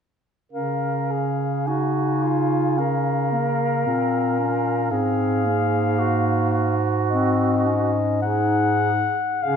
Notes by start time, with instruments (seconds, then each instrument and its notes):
0.52 bass clarinet C#3, clarinet C#4 F5, alto saxophone A#4
1.11 alto saxophone G#4
1.67 clarinet D#4 G#5, alto saxophone F#4
2.23 alto saxophone F4
2.78 clarinet C#4 F5, alto saxophone A#4
3.33 clarinet A#3
3.86 bass clarinet A#2, clarinet C4
4.39 clarinet C#4
4.91 bass clarinet G#2, clarinet C4 F5, alto saxophone G#4
5.45 clarinet A#3
5.99 alto saxophone F#4
6.53 alto saxophone F#4
7.09 clarinet C4 D#5
7.66 clarinet C#4
8.21 clarinet D#4 F#5, alto saxophone G#4
9.42 bass clarinet C#3, clarinet C#4 F5, alto saxophone G#4